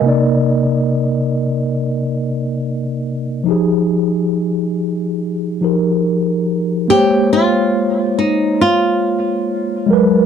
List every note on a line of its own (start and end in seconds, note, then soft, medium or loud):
0.00 3.41 C3 medium
0.00 3.42 A#3 medium
0.00 0.28 A#4 medium
0.00 0.27 D#5 medium
0.06 3.44 D#4 medium
0.06 3.45 D5 medium
3.44 5.56 F3 medium
3.44 5.57 D#4 medium
3.48 5.58 G4 medium
3.48 5.59 G#4 medium
5.61 6.90 F3 medium
5.61 6.90 D#4 soft
5.61 6.91 G4 soft
5.61 6.91 A#4 medium
6.88 9.85 G#3 medium
6.88 9.85 A#3 medium
6.88 7.32 G4 loud
6.92 9.87 C5 medium
6.92 9.88 C#5 medium
7.33 8.21 F4 loud
8.19 8.62 D#4 medium
8.61 9.86 F4 medium
9.86 10.26 F#3 medium
9.86 10.26 G#3 medium
9.91 10.26 A#4 medium
9.91 10.26 B4 medium